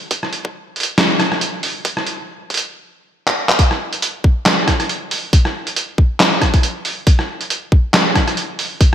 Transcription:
0.11 kick loud
0.11 closed hi-hat medium
0.23 cross-stick soft
0.33 closed hi-hat medium
0.45 kick loud
0.76 closed hi-hat soft
0.80 closed hi-hat medium
0.83 closed hi-hat medium
0.98 cross-stick medium
0.98 snare loud
0.98 closed hi-hat medium
1.20 cross-stick medium
1.20 closed hi-hat soft
1.32 cross-stick soft
1.41 closed hi-hat medium
1.63 open hi-hat medium
1.85 kick loud
1.85 closed hi-hat medium
1.97 cross-stick medium
2.07 closed hi-hat medium
2.50 kick medium
2.50 closed hi-hat soft
2.54 closed hi-hat medium
2.57 closed hi-hat medium
3.27 clap medium
3.49 clap loud
3.59 kick loud
3.59 closed hi-hat medium
3.71 cross-stick soft
3.93 closed hi-hat medium
4.02 closed hi-hat medium
4.24 kick loud
4.46 cross-stick soft
4.46 snare loud
4.46 clap loud
4.46 closed hi-hat medium
4.68 kick medium
4.68 cross-stick medium
4.68 closed hi-hat medium
4.80 cross-stick soft
4.80 closed hi-hat medium
4.89 closed hi-hat medium
5.11 open hi-hat medium
5.33 kick loud
5.33 closed hi-hat medium
5.45 cross-stick medium
5.67 closed hi-hat medium
5.76 closed hi-hat medium
5.98 kick loud
6.20 snare loud
6.20 clap medium
6.20 closed hi-hat medium
6.42 kick medium
6.42 cross-stick medium
6.42 closed hi-hat medium
6.54 kick loud
6.54 closed hi-hat medium
6.63 closed hi-hat medium
6.85 open hi-hat medium
7.07 kick loud
7.07 closed hi-hat medium
7.19 cross-stick soft
7.41 closed hi-hat medium
7.50 closed hi-hat medium
7.72 kick loud
7.94 cross-stick medium
7.94 snare loud
7.94 clap medium
7.94 closed hi-hat medium
8.15 kick medium
8.15 cross-stick medium
8.15 closed hi-hat medium
8.28 cross-stick medium
8.28 closed hi-hat soft
8.37 closed hi-hat medium
8.59 open hi-hat medium
8.81 kick loud
8.81 closed hi-hat medium

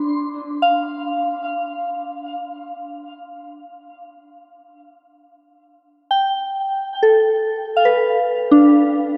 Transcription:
0.00 1.71 D4 medium
0.00 1.43 C6 medium
0.62 3.61 F5 medium
6.11 7.93 G5 medium
7.03 8.02 A4 soft
7.77 9.17 F5 medium
7.85 9.17 B4 soft
8.51 9.17 D4 medium

